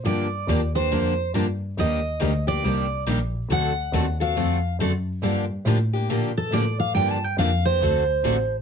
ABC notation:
X:1
M:4/4
L:1/16
Q:"Swing" 1/4=139
K:Gm
V:1 name="Steel-string acoustic guitar"
d6 c6 z4 | e6 d6 z4 | ^f6 ^e6 z4 | z8 z2 A2 d2 f2 |
(3g2 a2 g2 f2 c8- c z |]
V:2 name="Steel-string acoustic guitar"
[D,F,B,DG]2 z2 [D,F,B,DG]2 [B,DG]2 [D,F,B,DG]2 z2 [D,F,B,DG]2 z2 | [E,G,B,DG]2 z2 [E,G,B,DG]2 [B,DG]2 [E,G,B,DG]2 z2 [E,G,B,DG]2 z2 | [D,A,C^FA]2 z2 [D,A,CFA]2 [CFA]2 [D,A,CFA]2 z2 [D,A,CFA]2 z2 | [D,F,B,DG]2 z2 [D,F,B,DG]2 [B,DG]2 [D,F,B,DG]2 z2 [D,F,B,DG]2 z2 |
[D,F,B,DG]2 z2 [D,F,B,DG]2 [B,DG]2 [D,A,C^FA]2 z2 [D,A,CFA]2 z2 |]
V:3 name="Steel-string acoustic guitar"
[D,F,B,DG]2 z2 [D,F,B,DG]2 z2 [D,F,B,DG]2 z2 [D,F,B,DG]2 z2 | [E,G,B,DG]2 z2 [E,G,B,DG]2 z2 [E,G,B,DG]2 z2 [E,G,B,DG]2 z2 | [D,A,C^FA]2 z2 [D,A,CFA]2 z2 [D,A,CFA]2 z2 [D,A,CFA]2 z2 | [D,F,B,DG]2 z2 [D,F,B,DG]2 z2 [D,F,B,DG]2 z2 [D,F,B,DG]2 z2 |
[D,F,B,DG]2 z2 [D,F,B,DG]2 z2 [D,A,C^FA]2 z2 [D,A,CFA]2 z2 |]
V:4 name="Double bass" clef=bass
G,,4 E,,4 F,,4 G,,4 | E,,4 D,,2 D,,2 C,,4 B,,,2 B,,,2 | D,,4 E,,4 ^E,,4 ^F,,4 | G,,2 G,,2 A,,4 B,,4 A,,4 |
G,,4 F,,4 D,,4 A,,,4 |]